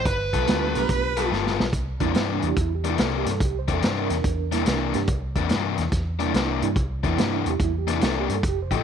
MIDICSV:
0, 0, Header, 1, 7, 480
1, 0, Start_track
1, 0, Tempo, 418994
1, 62, Time_signature, 4, 2, 24, 8
1, 10119, End_track
2, 0, Start_track
2, 0, Title_t, "Lead electric guitar"
2, 0, Program_c, 0, 29
2, 75, Note_on_c, 0, 71, 77
2, 1463, Note_off_c, 0, 71, 0
2, 10119, End_track
3, 0, Start_track
3, 0, Title_t, "Harmonica"
3, 0, Program_c, 1, 22
3, 888, Note_on_c, 1, 70, 73
3, 1030, Note_off_c, 1, 70, 0
3, 1057, Note_on_c, 1, 71, 88
3, 1506, Note_off_c, 1, 71, 0
3, 10119, End_track
4, 0, Start_track
4, 0, Title_t, "Reed electric piano"
4, 0, Program_c, 2, 4
4, 534, Note_on_c, 2, 56, 65
4, 539, Note_on_c, 2, 58, 60
4, 544, Note_on_c, 2, 61, 55
4, 552, Note_on_c, 2, 64, 51
4, 557, Note_on_c, 2, 66, 60
4, 823, Note_off_c, 2, 56, 0
4, 825, Note_off_c, 2, 58, 0
4, 828, Note_off_c, 2, 61, 0
4, 831, Note_off_c, 2, 64, 0
4, 834, Note_off_c, 2, 66, 0
4, 846, Note_on_c, 2, 57, 59
4, 852, Note_on_c, 2, 59, 53
4, 856, Note_on_c, 2, 62, 57
4, 862, Note_on_c, 2, 65, 49
4, 866, Note_on_c, 2, 67, 69
4, 1269, Note_off_c, 2, 57, 0
4, 1272, Note_off_c, 2, 59, 0
4, 1274, Note_off_c, 2, 62, 0
4, 1277, Note_off_c, 2, 65, 0
4, 1279, Note_off_c, 2, 67, 0
4, 2292, Note_on_c, 2, 55, 58
4, 2297, Note_on_c, 2, 58, 57
4, 2303, Note_on_c, 2, 62, 56
4, 2310, Note_on_c, 2, 64, 70
4, 2343, Note_off_c, 2, 64, 0
4, 2357, Note_on_c, 2, 64, 82
4, 2442, Note_off_c, 2, 55, 0
4, 2445, Note_off_c, 2, 58, 0
4, 2448, Note_off_c, 2, 62, 0
4, 2640, Note_off_c, 2, 64, 0
4, 2674, Note_on_c, 2, 62, 76
4, 2767, Note_off_c, 2, 62, 0
4, 2767, Note_on_c, 2, 55, 65
4, 2773, Note_on_c, 2, 58, 61
4, 2781, Note_on_c, 2, 62, 66
4, 2787, Note_on_c, 2, 64, 72
4, 2837, Note_on_c, 2, 67, 80
4, 2920, Note_off_c, 2, 55, 0
4, 2923, Note_off_c, 2, 58, 0
4, 2927, Note_off_c, 2, 62, 0
4, 2930, Note_off_c, 2, 64, 0
4, 2966, Note_off_c, 2, 67, 0
4, 2990, Note_on_c, 2, 64, 81
4, 3122, Note_off_c, 2, 64, 0
4, 3150, Note_on_c, 2, 67, 69
4, 3282, Note_off_c, 2, 67, 0
4, 3321, Note_on_c, 2, 64, 75
4, 3447, Note_off_c, 2, 64, 0
4, 3476, Note_on_c, 2, 69, 69
4, 3605, Note_off_c, 2, 69, 0
4, 3640, Note_on_c, 2, 67, 84
4, 3767, Note_off_c, 2, 67, 0
4, 3787, Note_on_c, 2, 69, 73
4, 3920, Note_off_c, 2, 69, 0
4, 3950, Note_on_c, 2, 67, 87
4, 4082, Note_off_c, 2, 67, 0
4, 4111, Note_on_c, 2, 72, 83
4, 4243, Note_off_c, 2, 72, 0
4, 4277, Note_on_c, 2, 69, 74
4, 4406, Note_off_c, 2, 69, 0
4, 4430, Note_on_c, 2, 72, 86
4, 4562, Note_off_c, 2, 72, 0
4, 4587, Note_on_c, 2, 62, 75
4, 4594, Note_on_c, 2, 70, 90
4, 5169, Note_on_c, 2, 55, 59
4, 5171, Note_off_c, 2, 62, 0
4, 5174, Note_on_c, 2, 58, 56
4, 5185, Note_on_c, 2, 62, 61
4, 5189, Note_on_c, 2, 64, 71
4, 5622, Note_off_c, 2, 55, 0
4, 5625, Note_off_c, 2, 58, 0
4, 5630, Note_off_c, 2, 62, 0
4, 5633, Note_off_c, 2, 64, 0
4, 5646, Note_on_c, 2, 55, 72
4, 5652, Note_on_c, 2, 58, 62
4, 5661, Note_on_c, 2, 62, 71
4, 5669, Note_on_c, 2, 67, 82
4, 5800, Note_off_c, 2, 55, 0
4, 5802, Note_off_c, 2, 58, 0
4, 5807, Note_off_c, 2, 62, 0
4, 5811, Note_off_c, 2, 67, 0
4, 5966, Note_off_c, 2, 70, 0
4, 7089, Note_on_c, 2, 55, 63
4, 7098, Note_on_c, 2, 58, 59
4, 7107, Note_on_c, 2, 62, 58
4, 7112, Note_on_c, 2, 64, 65
4, 7542, Note_off_c, 2, 55, 0
4, 7547, Note_off_c, 2, 58, 0
4, 7551, Note_off_c, 2, 62, 0
4, 7553, Note_off_c, 2, 64, 0
4, 7568, Note_on_c, 2, 55, 67
4, 7575, Note_on_c, 2, 58, 64
4, 7586, Note_on_c, 2, 62, 68
4, 7592, Note_on_c, 2, 64, 84
4, 7720, Note_off_c, 2, 55, 0
4, 7724, Note_off_c, 2, 58, 0
4, 7729, Note_off_c, 2, 62, 0
4, 7732, Note_off_c, 2, 64, 0
4, 8108, Note_on_c, 2, 64, 83
4, 8206, Note_on_c, 2, 55, 65
4, 8214, Note_off_c, 2, 64, 0
4, 8215, Note_on_c, 2, 58, 58
4, 8223, Note_on_c, 2, 62, 53
4, 8227, Note_on_c, 2, 64, 76
4, 8421, Note_off_c, 2, 62, 0
4, 8434, Note_on_c, 2, 62, 70
4, 8564, Note_off_c, 2, 62, 0
4, 8589, Note_on_c, 2, 67, 80
4, 8721, Note_off_c, 2, 67, 0
4, 8738, Note_off_c, 2, 64, 0
4, 8752, Note_on_c, 2, 64, 76
4, 8883, Note_off_c, 2, 64, 0
4, 8916, Note_on_c, 2, 67, 74
4, 8947, Note_off_c, 2, 55, 0
4, 8951, Note_off_c, 2, 58, 0
4, 9045, Note_off_c, 2, 67, 0
4, 9079, Note_on_c, 2, 64, 84
4, 9206, Note_off_c, 2, 64, 0
4, 9238, Note_on_c, 2, 69, 86
4, 9365, Note_off_c, 2, 69, 0
4, 9396, Note_on_c, 2, 67, 96
4, 9525, Note_off_c, 2, 67, 0
4, 9563, Note_on_c, 2, 69, 73
4, 9688, Note_off_c, 2, 69, 0
4, 9721, Note_on_c, 2, 67, 102
4, 9847, Note_off_c, 2, 67, 0
4, 9879, Note_on_c, 2, 72, 70
4, 10006, Note_off_c, 2, 72, 0
4, 10041, Note_on_c, 2, 69, 70
4, 10119, Note_off_c, 2, 69, 0
4, 10119, End_track
5, 0, Start_track
5, 0, Title_t, "Overdriven electric guitar"
5, 0, Program_c, 3, 29
5, 388, Note_on_c, 3, 69, 100
5, 391, Note_on_c, 3, 65, 86
5, 395, Note_on_c, 3, 59, 79
5, 400, Note_on_c, 3, 55, 80
5, 533, Note_off_c, 3, 55, 0
5, 539, Note_off_c, 3, 59, 0
5, 542, Note_off_c, 3, 65, 0
5, 546, Note_off_c, 3, 69, 0
5, 547, Note_on_c, 3, 55, 67
5, 553, Note_on_c, 3, 59, 72
5, 556, Note_on_c, 3, 65, 74
5, 562, Note_on_c, 3, 69, 74
5, 910, Note_off_c, 3, 55, 0
5, 913, Note_off_c, 3, 59, 0
5, 914, Note_off_c, 3, 65, 0
5, 917, Note_off_c, 3, 69, 0
5, 1340, Note_on_c, 3, 69, 85
5, 1342, Note_on_c, 3, 65, 82
5, 1348, Note_on_c, 3, 59, 80
5, 1352, Note_on_c, 3, 55, 72
5, 1491, Note_off_c, 3, 55, 0
5, 1499, Note_off_c, 3, 59, 0
5, 1500, Note_off_c, 3, 65, 0
5, 1502, Note_off_c, 3, 69, 0
5, 1505, Note_on_c, 3, 55, 64
5, 1512, Note_on_c, 3, 59, 67
5, 1514, Note_on_c, 3, 65, 76
5, 1519, Note_on_c, 3, 69, 73
5, 1869, Note_off_c, 3, 55, 0
5, 1872, Note_off_c, 3, 59, 0
5, 1873, Note_off_c, 3, 65, 0
5, 1876, Note_off_c, 3, 69, 0
5, 2298, Note_on_c, 3, 62, 82
5, 2300, Note_on_c, 3, 58, 81
5, 2305, Note_on_c, 3, 52, 82
5, 2311, Note_on_c, 3, 48, 74
5, 2444, Note_off_c, 3, 48, 0
5, 2451, Note_off_c, 3, 52, 0
5, 2453, Note_off_c, 3, 58, 0
5, 2458, Note_on_c, 3, 48, 75
5, 2459, Note_off_c, 3, 62, 0
5, 2465, Note_on_c, 3, 52, 62
5, 2467, Note_on_c, 3, 58, 78
5, 2472, Note_on_c, 3, 62, 75
5, 2826, Note_off_c, 3, 48, 0
5, 2829, Note_off_c, 3, 52, 0
5, 2830, Note_off_c, 3, 58, 0
5, 2833, Note_off_c, 3, 62, 0
5, 3256, Note_on_c, 3, 62, 83
5, 3261, Note_on_c, 3, 58, 76
5, 3266, Note_on_c, 3, 52, 82
5, 3271, Note_on_c, 3, 48, 68
5, 3404, Note_off_c, 3, 48, 0
5, 3408, Note_off_c, 3, 52, 0
5, 3411, Note_off_c, 3, 58, 0
5, 3416, Note_off_c, 3, 62, 0
5, 3418, Note_on_c, 3, 48, 66
5, 3422, Note_on_c, 3, 52, 71
5, 3424, Note_on_c, 3, 58, 79
5, 3429, Note_on_c, 3, 62, 72
5, 3786, Note_off_c, 3, 48, 0
5, 3788, Note_off_c, 3, 52, 0
5, 3789, Note_off_c, 3, 58, 0
5, 3791, Note_off_c, 3, 62, 0
5, 4216, Note_on_c, 3, 62, 108
5, 4219, Note_on_c, 3, 58, 78
5, 4224, Note_on_c, 3, 52, 84
5, 4228, Note_on_c, 3, 48, 83
5, 4371, Note_off_c, 3, 48, 0
5, 4374, Note_off_c, 3, 52, 0
5, 4378, Note_off_c, 3, 58, 0
5, 4381, Note_off_c, 3, 62, 0
5, 4385, Note_on_c, 3, 48, 61
5, 4388, Note_on_c, 3, 52, 68
5, 4392, Note_on_c, 3, 58, 72
5, 4396, Note_on_c, 3, 62, 72
5, 4749, Note_off_c, 3, 48, 0
5, 4750, Note_off_c, 3, 52, 0
5, 4753, Note_off_c, 3, 58, 0
5, 4755, Note_off_c, 3, 62, 0
5, 5174, Note_on_c, 3, 62, 82
5, 5179, Note_on_c, 3, 58, 86
5, 5182, Note_on_c, 3, 52, 83
5, 5187, Note_on_c, 3, 48, 69
5, 5325, Note_off_c, 3, 48, 0
5, 5330, Note_off_c, 3, 52, 0
5, 5335, Note_off_c, 3, 58, 0
5, 5337, Note_off_c, 3, 62, 0
5, 5338, Note_on_c, 3, 48, 74
5, 5344, Note_on_c, 3, 52, 73
5, 5349, Note_on_c, 3, 58, 80
5, 5351, Note_on_c, 3, 62, 73
5, 5706, Note_off_c, 3, 48, 0
5, 5709, Note_off_c, 3, 52, 0
5, 5711, Note_off_c, 3, 58, 0
5, 5712, Note_off_c, 3, 62, 0
5, 6140, Note_on_c, 3, 62, 103
5, 6146, Note_on_c, 3, 58, 87
5, 6152, Note_on_c, 3, 52, 80
5, 6156, Note_on_c, 3, 48, 78
5, 6290, Note_off_c, 3, 48, 0
5, 6297, Note_off_c, 3, 52, 0
5, 6299, Note_off_c, 3, 58, 0
5, 6303, Note_off_c, 3, 62, 0
5, 6304, Note_on_c, 3, 48, 70
5, 6311, Note_on_c, 3, 52, 79
5, 6313, Note_on_c, 3, 58, 74
5, 6315, Note_on_c, 3, 62, 74
5, 6669, Note_off_c, 3, 48, 0
5, 6672, Note_off_c, 3, 52, 0
5, 6673, Note_off_c, 3, 58, 0
5, 6674, Note_off_c, 3, 62, 0
5, 7093, Note_on_c, 3, 62, 95
5, 7099, Note_on_c, 3, 58, 84
5, 7104, Note_on_c, 3, 52, 74
5, 7107, Note_on_c, 3, 48, 70
5, 7249, Note_off_c, 3, 48, 0
5, 7254, Note_off_c, 3, 52, 0
5, 7259, Note_off_c, 3, 62, 0
5, 7262, Note_off_c, 3, 58, 0
5, 7263, Note_on_c, 3, 48, 70
5, 7268, Note_on_c, 3, 52, 73
5, 7274, Note_on_c, 3, 58, 69
5, 7277, Note_on_c, 3, 62, 70
5, 7628, Note_off_c, 3, 48, 0
5, 7631, Note_off_c, 3, 52, 0
5, 7634, Note_off_c, 3, 58, 0
5, 7635, Note_off_c, 3, 62, 0
5, 8058, Note_on_c, 3, 62, 94
5, 8063, Note_on_c, 3, 58, 83
5, 8072, Note_on_c, 3, 52, 77
5, 8073, Note_on_c, 3, 48, 74
5, 8207, Note_off_c, 3, 48, 0
5, 8211, Note_off_c, 3, 52, 0
5, 8219, Note_off_c, 3, 62, 0
5, 8220, Note_off_c, 3, 58, 0
5, 8220, Note_on_c, 3, 48, 71
5, 8225, Note_on_c, 3, 52, 69
5, 8233, Note_on_c, 3, 62, 70
5, 8234, Note_on_c, 3, 58, 79
5, 8587, Note_off_c, 3, 48, 0
5, 8589, Note_off_c, 3, 52, 0
5, 8593, Note_off_c, 3, 58, 0
5, 8593, Note_off_c, 3, 62, 0
5, 9017, Note_on_c, 3, 62, 84
5, 9021, Note_on_c, 3, 58, 76
5, 9023, Note_on_c, 3, 52, 75
5, 9028, Note_on_c, 3, 48, 65
5, 9167, Note_off_c, 3, 48, 0
5, 9172, Note_off_c, 3, 52, 0
5, 9179, Note_off_c, 3, 58, 0
5, 9181, Note_off_c, 3, 62, 0
5, 9181, Note_on_c, 3, 48, 62
5, 9186, Note_on_c, 3, 52, 69
5, 9193, Note_on_c, 3, 58, 73
5, 9196, Note_on_c, 3, 62, 81
5, 9546, Note_off_c, 3, 48, 0
5, 9549, Note_off_c, 3, 52, 0
5, 9552, Note_off_c, 3, 58, 0
5, 9554, Note_off_c, 3, 62, 0
5, 9979, Note_on_c, 3, 67, 88
5, 9983, Note_on_c, 3, 63, 84
5, 9989, Note_on_c, 3, 57, 80
5, 9992, Note_on_c, 3, 53, 81
5, 10119, Note_off_c, 3, 53, 0
5, 10119, Note_off_c, 3, 57, 0
5, 10119, Note_off_c, 3, 63, 0
5, 10119, Note_off_c, 3, 67, 0
5, 10119, End_track
6, 0, Start_track
6, 0, Title_t, "Fingered electric bass"
6, 0, Program_c, 4, 33
6, 62, Note_on_c, 4, 31, 78
6, 364, Note_off_c, 4, 31, 0
6, 382, Note_on_c, 4, 35, 86
6, 536, Note_off_c, 4, 35, 0
6, 545, Note_on_c, 4, 38, 78
6, 845, Note_off_c, 4, 38, 0
6, 861, Note_on_c, 4, 35, 79
6, 1016, Note_off_c, 4, 35, 0
6, 1025, Note_on_c, 4, 35, 77
6, 1482, Note_off_c, 4, 35, 0
6, 1505, Note_on_c, 4, 31, 72
6, 1806, Note_off_c, 4, 31, 0
6, 1820, Note_on_c, 4, 35, 78
6, 1983, Note_off_c, 4, 35, 0
6, 1983, Note_on_c, 4, 36, 68
6, 2284, Note_off_c, 4, 36, 0
6, 2296, Note_on_c, 4, 40, 87
6, 2454, Note_off_c, 4, 40, 0
6, 2463, Note_on_c, 4, 43, 83
6, 2765, Note_off_c, 4, 43, 0
6, 2776, Note_on_c, 4, 40, 81
6, 2933, Note_off_c, 4, 40, 0
6, 2943, Note_on_c, 4, 40, 80
6, 3401, Note_off_c, 4, 40, 0
6, 3422, Note_on_c, 4, 36, 84
6, 3724, Note_off_c, 4, 36, 0
6, 3736, Note_on_c, 4, 43, 83
6, 3893, Note_off_c, 4, 43, 0
6, 3901, Note_on_c, 4, 36, 81
6, 4204, Note_off_c, 4, 36, 0
6, 4217, Note_on_c, 4, 40, 85
6, 4374, Note_off_c, 4, 40, 0
6, 4378, Note_on_c, 4, 43, 84
6, 4683, Note_off_c, 4, 43, 0
6, 4694, Note_on_c, 4, 40, 84
6, 4852, Note_off_c, 4, 40, 0
6, 4863, Note_on_c, 4, 40, 79
6, 5321, Note_off_c, 4, 40, 0
6, 5342, Note_on_c, 4, 36, 84
6, 5644, Note_off_c, 4, 36, 0
6, 5664, Note_on_c, 4, 43, 89
6, 5814, Note_off_c, 4, 43, 0
6, 5820, Note_on_c, 4, 36, 79
6, 6124, Note_off_c, 4, 36, 0
6, 6136, Note_on_c, 4, 40, 86
6, 6294, Note_off_c, 4, 40, 0
6, 6306, Note_on_c, 4, 43, 85
6, 6606, Note_off_c, 4, 43, 0
6, 6622, Note_on_c, 4, 40, 91
6, 6777, Note_off_c, 4, 40, 0
6, 6783, Note_on_c, 4, 40, 76
6, 7241, Note_off_c, 4, 40, 0
6, 7262, Note_on_c, 4, 36, 90
6, 7564, Note_off_c, 4, 36, 0
6, 7577, Note_on_c, 4, 43, 83
6, 7734, Note_off_c, 4, 43, 0
6, 7744, Note_on_c, 4, 36, 72
6, 8045, Note_off_c, 4, 36, 0
6, 8061, Note_on_c, 4, 40, 90
6, 8216, Note_off_c, 4, 40, 0
6, 8225, Note_on_c, 4, 43, 80
6, 8525, Note_off_c, 4, 43, 0
6, 8539, Note_on_c, 4, 40, 87
6, 8694, Note_off_c, 4, 40, 0
6, 8706, Note_on_c, 4, 40, 78
6, 9162, Note_off_c, 4, 40, 0
6, 9189, Note_on_c, 4, 36, 76
6, 9488, Note_off_c, 4, 36, 0
6, 9502, Note_on_c, 4, 43, 78
6, 9656, Note_off_c, 4, 43, 0
6, 9663, Note_on_c, 4, 29, 76
6, 9964, Note_off_c, 4, 29, 0
6, 9979, Note_on_c, 4, 33, 87
6, 10119, Note_off_c, 4, 33, 0
6, 10119, End_track
7, 0, Start_track
7, 0, Title_t, "Drums"
7, 61, Note_on_c, 9, 42, 67
7, 63, Note_on_c, 9, 36, 97
7, 176, Note_off_c, 9, 42, 0
7, 177, Note_off_c, 9, 36, 0
7, 380, Note_on_c, 9, 36, 60
7, 381, Note_on_c, 9, 42, 50
7, 494, Note_off_c, 9, 36, 0
7, 495, Note_off_c, 9, 42, 0
7, 543, Note_on_c, 9, 42, 77
7, 561, Note_on_c, 9, 38, 95
7, 658, Note_off_c, 9, 42, 0
7, 675, Note_off_c, 9, 38, 0
7, 860, Note_on_c, 9, 42, 59
7, 975, Note_off_c, 9, 42, 0
7, 1017, Note_on_c, 9, 42, 76
7, 1021, Note_on_c, 9, 36, 91
7, 1132, Note_off_c, 9, 42, 0
7, 1136, Note_off_c, 9, 36, 0
7, 1335, Note_on_c, 9, 42, 65
7, 1450, Note_off_c, 9, 42, 0
7, 1518, Note_on_c, 9, 38, 53
7, 1633, Note_off_c, 9, 38, 0
7, 1680, Note_on_c, 9, 38, 64
7, 1794, Note_off_c, 9, 38, 0
7, 1832, Note_on_c, 9, 38, 96
7, 1946, Note_off_c, 9, 38, 0
7, 1978, Note_on_c, 9, 42, 71
7, 1980, Note_on_c, 9, 36, 98
7, 2092, Note_off_c, 9, 42, 0
7, 2095, Note_off_c, 9, 36, 0
7, 2291, Note_on_c, 9, 42, 51
7, 2295, Note_on_c, 9, 36, 66
7, 2406, Note_off_c, 9, 42, 0
7, 2410, Note_off_c, 9, 36, 0
7, 2456, Note_on_c, 9, 42, 68
7, 2473, Note_on_c, 9, 38, 109
7, 2571, Note_off_c, 9, 42, 0
7, 2588, Note_off_c, 9, 38, 0
7, 2775, Note_on_c, 9, 42, 57
7, 2890, Note_off_c, 9, 42, 0
7, 2938, Note_on_c, 9, 42, 69
7, 2940, Note_on_c, 9, 36, 95
7, 3052, Note_off_c, 9, 42, 0
7, 3055, Note_off_c, 9, 36, 0
7, 3255, Note_on_c, 9, 42, 58
7, 3370, Note_off_c, 9, 42, 0
7, 3411, Note_on_c, 9, 42, 71
7, 3429, Note_on_c, 9, 38, 99
7, 3526, Note_off_c, 9, 42, 0
7, 3543, Note_off_c, 9, 38, 0
7, 3738, Note_on_c, 9, 42, 66
7, 3755, Note_on_c, 9, 38, 32
7, 3852, Note_off_c, 9, 42, 0
7, 3869, Note_off_c, 9, 38, 0
7, 3899, Note_on_c, 9, 42, 73
7, 3900, Note_on_c, 9, 36, 95
7, 4013, Note_off_c, 9, 42, 0
7, 4014, Note_off_c, 9, 36, 0
7, 4214, Note_on_c, 9, 42, 51
7, 4217, Note_on_c, 9, 36, 56
7, 4329, Note_off_c, 9, 42, 0
7, 4331, Note_off_c, 9, 36, 0
7, 4380, Note_on_c, 9, 42, 81
7, 4397, Note_on_c, 9, 38, 107
7, 4494, Note_off_c, 9, 42, 0
7, 4512, Note_off_c, 9, 38, 0
7, 4696, Note_on_c, 9, 42, 64
7, 4713, Note_on_c, 9, 38, 28
7, 4810, Note_off_c, 9, 42, 0
7, 4827, Note_off_c, 9, 38, 0
7, 4858, Note_on_c, 9, 42, 78
7, 4859, Note_on_c, 9, 36, 99
7, 4972, Note_off_c, 9, 42, 0
7, 4974, Note_off_c, 9, 36, 0
7, 5176, Note_on_c, 9, 42, 69
7, 5193, Note_on_c, 9, 38, 32
7, 5291, Note_off_c, 9, 42, 0
7, 5308, Note_off_c, 9, 38, 0
7, 5335, Note_on_c, 9, 42, 81
7, 5352, Note_on_c, 9, 38, 103
7, 5450, Note_off_c, 9, 42, 0
7, 5467, Note_off_c, 9, 38, 0
7, 5654, Note_on_c, 9, 42, 63
7, 5671, Note_on_c, 9, 38, 33
7, 5768, Note_off_c, 9, 42, 0
7, 5785, Note_off_c, 9, 38, 0
7, 5812, Note_on_c, 9, 42, 79
7, 5818, Note_on_c, 9, 36, 106
7, 5926, Note_off_c, 9, 42, 0
7, 5933, Note_off_c, 9, 36, 0
7, 6133, Note_on_c, 9, 42, 50
7, 6136, Note_on_c, 9, 36, 60
7, 6248, Note_off_c, 9, 42, 0
7, 6250, Note_off_c, 9, 36, 0
7, 6291, Note_on_c, 9, 42, 72
7, 6308, Note_on_c, 9, 38, 99
7, 6405, Note_off_c, 9, 42, 0
7, 6422, Note_off_c, 9, 38, 0
7, 6616, Note_on_c, 9, 42, 65
7, 6633, Note_on_c, 9, 38, 34
7, 6730, Note_off_c, 9, 42, 0
7, 6747, Note_off_c, 9, 38, 0
7, 6779, Note_on_c, 9, 42, 70
7, 6781, Note_on_c, 9, 36, 92
7, 6796, Note_on_c, 9, 38, 25
7, 6894, Note_off_c, 9, 42, 0
7, 6895, Note_off_c, 9, 36, 0
7, 6911, Note_off_c, 9, 38, 0
7, 7099, Note_on_c, 9, 42, 55
7, 7214, Note_off_c, 9, 42, 0
7, 7264, Note_on_c, 9, 42, 70
7, 7282, Note_on_c, 9, 38, 101
7, 7379, Note_off_c, 9, 42, 0
7, 7396, Note_off_c, 9, 38, 0
7, 7585, Note_on_c, 9, 42, 61
7, 7699, Note_off_c, 9, 42, 0
7, 7742, Note_on_c, 9, 36, 99
7, 7743, Note_on_c, 9, 42, 66
7, 7857, Note_off_c, 9, 36, 0
7, 7858, Note_off_c, 9, 42, 0
7, 8059, Note_on_c, 9, 36, 55
7, 8062, Note_on_c, 9, 42, 49
7, 8174, Note_off_c, 9, 36, 0
7, 8177, Note_off_c, 9, 42, 0
7, 8225, Note_on_c, 9, 42, 73
7, 8243, Note_on_c, 9, 38, 93
7, 8340, Note_off_c, 9, 42, 0
7, 8357, Note_off_c, 9, 38, 0
7, 8545, Note_on_c, 9, 42, 61
7, 8660, Note_off_c, 9, 42, 0
7, 8703, Note_on_c, 9, 36, 96
7, 8703, Note_on_c, 9, 42, 80
7, 8817, Note_off_c, 9, 36, 0
7, 8818, Note_off_c, 9, 42, 0
7, 9023, Note_on_c, 9, 42, 65
7, 9040, Note_on_c, 9, 38, 31
7, 9138, Note_off_c, 9, 42, 0
7, 9155, Note_off_c, 9, 38, 0
7, 9179, Note_on_c, 9, 42, 81
7, 9196, Note_on_c, 9, 38, 112
7, 9293, Note_off_c, 9, 42, 0
7, 9311, Note_off_c, 9, 38, 0
7, 9502, Note_on_c, 9, 42, 65
7, 9617, Note_off_c, 9, 42, 0
7, 9661, Note_on_c, 9, 36, 101
7, 9662, Note_on_c, 9, 42, 69
7, 9776, Note_off_c, 9, 36, 0
7, 9776, Note_off_c, 9, 42, 0
7, 9976, Note_on_c, 9, 36, 63
7, 9979, Note_on_c, 9, 42, 48
7, 10091, Note_off_c, 9, 36, 0
7, 10094, Note_off_c, 9, 42, 0
7, 10119, End_track
0, 0, End_of_file